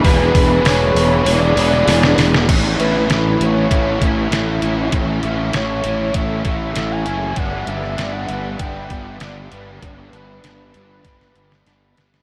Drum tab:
CC |----------------|x---------------|----------------|----------------|
HH |o-o-o-o-o-o-o-o-|x-x-x-x-x-x-x-x-|x-x-x-x-x-x-x-x-|x-x-x-x-x-x-x-x-|
SD |----oo-----ooooo|---oo-------o---|----o-------o---|---oo-------o---|
BD |o-o-------------|o-------o-o-----|o-------o-o-----|o-------o-o-----|

CC |----------------|
HH |x-x-x-x-x-x-x-x-|
SD |----o---oo-oo-oo|
BD |o-------o-------|